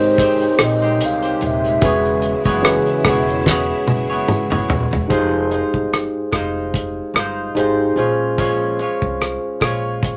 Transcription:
Already playing: upright bass G#1, string machine C3 G#3 G4, clean electric guitar C4 D#4 G4 C5, tine electric piano D#4 G4 A#4 C5 C#5 D#5, soft synth lead C5
0.00 shaker
0.18 clean electric guitar C4 D#4 G4 C5, kick, closed hi-hat, tambourine, shaker
0.40 shaker
0.59 upright bass A#1, cross-stick, closed hi-hat, tambourine, shaker
0.63 soft synth lead D#5
0.82 clean electric guitar D#4 G4 C5, tambourine, shaker
0.99 upright bass C2, closed hi-hat, tambourine, shaker
1.05 soft synth lead F5
1.23 clean electric guitar G4 C5, shaker
1.41 upright bass D#1, closed hi-hat, tambourine, shaker
1.46 soft synth lead E5
1.64 tambourine, shaker
1.81 upright bass E1, string machine C#3 E4, clean electric guitar B3 E4 G#4, tine electric piano C#4 F#4 G#4 B4, kick, closed hi-hat, tambourine, shaker
1.85 clean electric guitar C#5
2.05 tambourine, shaker
2.22 closed hi-hat, tambourine, shaker
2.44 upright bass F#1, clean electric guitar E3 G#3 B3 E4 G#4 C#5, kick, tambourine, shaker
2.62 tine electric piano C#4 F#4 G#4 B4, cross-stick, closed hi-hat, tambourine, shaker
2.86 shaker
3.04 upright bass E1, clean electric guitar B3 E4, kick, cross-stick, closed hi-hat, tambourine, shaker
3.08 clean electric guitar G#4 C#5
3.28 shaker
3.46 clean electric guitar B3 E4 G#4 C#5, kick, snare, tambourine
3.87 upright bass F#1, high tom, tambourine
4.10 clean electric guitar B3 E4 G#4 C#5, tambourine
4.28 mid tom, tambourine
4.50 upright bass G#1, clean electric guitar B3 E4 G#4 C#5, mid tom
4.68 upright bass D#1, floor tom, tambourine
4.91 upright bass E1, floor tom, tambourine
5.08 upright bass F1, clean electric guitar F3 G#3 D#4 F4, tine electric piano D#4 G4 G#4 C5, kick, closed hi-hat
5.12 clean electric guitar C5
5.50 clean electric guitar G#3 D#4 F4 C5, closed hi-hat
5.74 upright bass G1, kick
5.93 cross-stick, closed hi-hat
6.32 upright bass F1, clean electric guitar G#3 D#4 F4 C5, kick, cross-stick, closed hi-hat
6.74 kick, closed hi-hat
7.14 upright bass G1, clean electric guitar G#3 D#4 F4, cross-stick, closed hi-hat
7.18 clean electric guitar C5
7.55 upright bass G#1, clean electric guitar G#3 D#4 F4, tine electric piano D#4 G4 G#4 C5, closed hi-hat
7.59 clean electric guitar C5
7.96 upright bass A#1, clean electric guitar G#3 C#4 F4 C#5, tine electric piano C#4 F4 G#4 C5, closed hi-hat
8.37 clean electric guitar A#2 F3 G#3 C#4 F4 C#5, kick, closed hi-hat
8.79 clean electric guitar G#3 C#4 F4 C#5, closed hi-hat
9.02 upright bass C2, kick
9.21 cross-stick, closed hi-hat
9.60 upright bass A#1, clean electric guitar G#3 C#4 F4 C#5, kick, cross-stick, closed hi-hat
10.03 kick, closed hi-hat

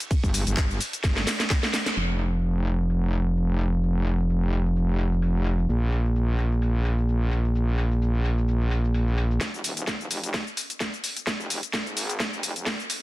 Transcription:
0.00 closed hi-hat, cabasa
0.11 kick, closed hi-hat, ride, cabasa
0.24 wobble bass G1, kick, cabasa
0.34 open hi-hat, cabasa
0.47 wobble bass G1, closed hi-hat, cabasa
0.57 kick, clap, closed hi-hat, ride, cabasa
0.71 cabasa
0.81 open hi-hat, cabasa
0.93 closed hi-hat, cabasa
1.04 wobble bass G1, kick, snare, closed hi-hat, ride, cabasa
1.17 snare, cabasa
1.27 snare, open hi-hat, cabasa
1.40 snare, closed hi-hat, cabasa
1.50 kick, snare, clap, open hi-hat, ride, cabasa
1.63 snare, cabasa
1.74 snare, open hi-hat, cabasa
1.86 snare, closed hi-hat, cabasa
1.97 wobble bass F1, crash, cabasa
2.20 open hi-hat, cabasa
2.33 cabasa
2.44 cabasa
2.57 cabasa
2.67 open hi-hat, cabasa
2.80 cabasa
2.90 open hi-hat, cabasa
3.03 cabasa
3.13 open hi-hat, cabasa
3.26 cabasa
3.37 cabasa
3.50 cabasa
3.60 open hi-hat, cabasa
3.73 cabasa
3.83 cabasa
3.96 cabasa
4.06 open hi-hat, cabasa
4.19 cabasa
4.30 cabasa
4.43 cabasa
4.53 open hi-hat, cabasa
4.66 cabasa
4.76 cabasa
4.89 cabasa
4.99 open hi-hat, cabasa
5.12 cabasa
5.22 open hi-hat, cabasa
5.36 cabasa
5.46 open hi-hat, cabasa
5.59 cabasa
5.69 wobble bass A#1, cabasa
5.82 cabasa
5.92 open hi-hat, cabasa
6.05 cabasa
6.16 cabasa
6.29 cabasa
6.39 open hi-hat, cabasa
6.52 cabasa
6.62 open hi-hat, cabasa
6.75 cabasa
6.85 open hi-hat, cabasa
6.98 cabasa
7.09 cabasa
7.22 cabasa
7.32 open hi-hat, cabasa
7.45 cabasa
7.55 cabasa
7.68 cabasa
7.78 open hi-hat, cabasa
7.91 cabasa
8.02 cabasa
8.15 cabasa
8.25 open hi-hat, cabasa
8.38 cabasa
8.48 cabasa
8.61 cabasa
8.71 open hi-hat, cabasa
8.84 cabasa
8.94 open hi-hat, cabasa
9.08 cabasa
9.18 open hi-hat, cabasa
9.31 cabasa
9.41 wobble bass F1, kick, snare, closed hi-hat, cabasa
9.54 cabasa
9.64 wobble bass D#1, open hi-hat, cabasa
9.77 closed hi-hat, cabasa
9.87 kick, snare, closed hi-hat, cabasa
10.01 cabasa
10.11 wobble bass F1, open hi-hat, cabasa
10.23 closed hi-hat, cabasa
10.34 kick, snare, open hi-hat, cabasa
10.47 cabasa
10.57 open hi-hat, cabasa
10.70 closed hi-hat, cabasa
10.80 kick, snare, closed hi-hat, cabasa
10.94 cabasa
11.04 open hi-hat, cabasa
11.17 closed hi-hat, cabasa
11.27 kick, snare, closed hi-hat, cabasa
11.40 wobble bass F1, cabasa
11.50 open hi-hat, cabasa
11.63 closed hi-hat, cabasa
11.74 kick, snare, closed hi-hat, cabasa
11.86 wobble bass G#1, cabasa
11.97 open hi-hat, cabasa
12.10 closed hi-hat, cabasa
12.20 kick, snare, closed hi-hat, cabasa
12.33 wobble bass F1, cabasa
12.43 open hi-hat, cabasa
12.56 wobble bass F1, closed hi-hat, cabasa
12.67 kick, snare, open hi-hat, cabasa
12.80 cabasa
12.90 open hi-hat, cabasa

